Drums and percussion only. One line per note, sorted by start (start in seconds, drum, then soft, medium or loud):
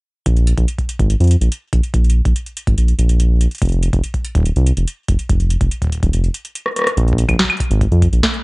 0.26 kick loud
0.26 closed hi-hat medium
0.36 closed hi-hat soft
0.47 closed hi-hat medium
0.57 kick medium
0.57 closed hi-hat medium
0.68 closed hi-hat medium
0.78 kick medium
0.78 closed hi-hat soft
0.89 closed hi-hat medium
0.99 kick loud
0.99 closed hi-hat soft
1.10 closed hi-hat medium
1.20 closed hi-hat soft
1.24 closed hi-hat soft
1.27 closed hi-hat soft
1.31 closed hi-hat medium
1.42 closed hi-hat medium
1.52 closed hi-hat medium
1.73 kick loud
1.73 closed hi-hat medium
1.83 closed hi-hat soft
1.94 kick loud
1.94 closed hi-hat medium
2.04 closed hi-hat soft
2.10 closed hi-hat medium
2.25 kick medium
2.25 closed hi-hat soft
2.36 closed hi-hat medium
2.46 closed hi-hat soft
2.57 closed hi-hat medium
2.67 kick loud
2.67 closed hi-hat medium
2.78 closed hi-hat medium
2.88 closed hi-hat soft
2.99 closed hi-hat medium
3.09 closed hi-hat medium
3.20 closed hi-hat medium
3.41 closed hi-hat medium
3.51 closed hi-hat soft
3.55 closed hi-hat soft
3.58 kick loud
3.58 closed hi-hat soft
3.62 closed hi-hat medium
3.65 closed hi-hat soft
3.69 closed hi-hat soft
3.72 closed hi-hat soft
3.83 closed hi-hat medium
3.93 kick loud
3.93 closed hi-hat medium
4.04 closed hi-hat medium
4.14 kick medium
4.14 closed hi-hat soft
4.25 closed hi-hat medium
4.35 kick loud
4.35 closed hi-hat medium
4.38 kick medium
4.40 kick medium
4.43 kick medium
4.43 closed hi-hat medium
4.56 closed hi-hat soft
4.67 closed hi-hat medium
4.77 closed hi-hat soft
4.88 closed hi-hat medium
5.08 kick loud
5.08 closed hi-hat medium
5.19 closed hi-hat medium
5.29 kick loud
5.29 closed hi-hat medium
5.40 closed hi-hat soft
5.50 closed hi-hat medium
5.61 kick loud
5.61 closed hi-hat medium
5.71 closed hi-hat medium
5.82 kick medium
5.82 closed hi-hat soft
5.84 kick medium
5.87 kick medium
5.90 kick soft
5.90 closed hi-hat medium
5.95 kick soft
5.98 kick soft
6.00 kick soft
6.00 closed hi-hat medium
6.03 kick loud
6.13 closed hi-hat medium
6.24 closed hi-hat soft
6.34 closed hi-hat medium
6.45 closed hi-hat soft
6.55 closed hi-hat medium
6.66 cross-stick soft
6.76 cross-stick soft
6.76 closed hi-hat medium
6.79 cross-stick soft
6.82 cross-stick medium
6.84 cross-stick medium
6.87 cross-stick medium
6.87 closed hi-hat soft
6.97 closed hi-hat medium
7.08 closed hi-hat soft
7.13 kick loud
7.18 closed hi-hat loud
7.29 kick loud
7.29 closed hi-hat medium
7.29 claves medium
7.34 kick medium
7.39 kick medium
7.39 snare loud
7.39 closed hi-hat medium
7.44 kick medium
7.50 closed hi-hat soft
7.50 claves medium
7.57 kick loud
7.57 closed hi-hat soft
7.60 closed hi-hat medium
7.64 closed hi-hat soft
7.71 closed hi-hat medium
7.81 kick loud
7.81 closed hi-hat medium
7.92 closed hi-hat soft
8.02 kick loud
8.02 closed hi-hat medium
8.13 closed hi-hat medium
8.23 kick loud
8.23 snare loud
8.23 closed hi-hat medium
8.34 closed hi-hat soft